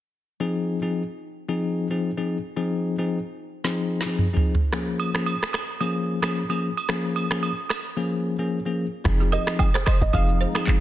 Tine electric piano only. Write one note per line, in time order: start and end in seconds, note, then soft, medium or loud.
0.40 0.79 F3 medium
0.40 0.79 C4 medium
0.40 0.79 D#4 medium
0.40 0.79 G#4 loud
0.82 1.02 F3 medium
0.82 1.02 C4 medium
0.82 1.02 D#4 medium
0.82 1.02 G#4 medium
1.48 1.87 F3 medium
1.48 1.87 C4 medium
1.48 1.87 D#4 medium
1.48 1.87 G#4 medium
1.90 2.10 F3 medium
1.90 2.10 C4 medium
1.90 2.10 D#4 medium
1.90 2.10 G#4 medium
2.17 2.37 F3 medium
2.17 2.37 C4 medium
2.17 2.37 D#4 medium
2.17 2.37 G#4 medium
2.56 2.95 F3 medium
2.56 2.95 C4 medium
2.56 2.95 D#4 medium
2.56 2.95 G#4 medium
2.98 3.18 F3 medium
2.98 3.18 C4 medium
2.98 3.18 D#4 medium
2.98 3.18 G#4 medium
3.64 4.03 F3 medium
3.64 4.03 C4 medium
3.64 4.03 D#4 medium
3.64 4.03 G#4 loud
4.06 4.26 F3 medium
4.06 4.26 C4 medium
4.06 4.26 D#4 medium
4.06 4.26 G#4 medium
4.33 4.53 F3 medium
4.33 4.53 C4 medium
4.33 4.53 D#4 medium
4.33 4.53 G#4 medium
4.72 5.11 F3 medium
4.72 5.11 A#3 medium
4.72 5.11 C#4 medium
4.72 5.11 G#4 medium
5.14 5.34 F3 medium
5.14 5.34 A#3 medium
5.14 5.34 C#4 medium
5.14 5.34 G#4 medium
5.81 6.19 F3 medium
5.81 6.19 A#3 medium
5.81 6.19 C#4 medium
5.81 6.19 G#4 loud
6.23 6.42 F3 medium
6.23 6.42 A#3 medium
6.23 6.42 C#4 medium
6.23 6.43 G#4 medium
6.49 6.69 F3 medium
6.49 6.69 A#3 medium
6.49 6.69 C#4 medium
6.49 6.70 G#4 medium
6.89 7.27 F3 medium
6.89 7.27 A#3 medium
6.89 7.27 C#4 medium
6.89 7.27 G#4 loud
7.31 7.50 F3 medium
7.31 7.50 A#3 medium
7.31 7.51 C#4 medium
7.31 7.51 G#4 medium
7.97 8.35 F3 medium
7.97 8.35 A#3 medium
7.97 8.35 C#4 medium
7.97 8.36 G#4 loud
8.39 8.58 F3 medium
8.39 8.59 A#3 medium
8.39 8.59 C#4 medium
8.39 8.59 G#4 medium
8.66 8.85 F3 medium
8.66 8.86 A#3 medium
8.66 8.86 C#4 medium
8.66 8.86 G#4 medium
9.05 9.43 F3 medium
9.05 9.43 C4 medium
9.05 9.44 D#4 medium
9.05 9.44 G#4 loud
9.47 9.67 F3 medium
9.47 9.67 C4 medium
9.47 9.67 D#4 medium
9.47 9.67 G#4 medium
10.13 10.52 F3 medium
10.13 10.52 C4 medium
10.13 10.52 D#4 medium
10.13 10.52 G#4 loud
10.55 10.75 F3 medium
10.55 10.75 C4 medium
10.55 10.75 D#4 medium
10.55 10.75 G#4 medium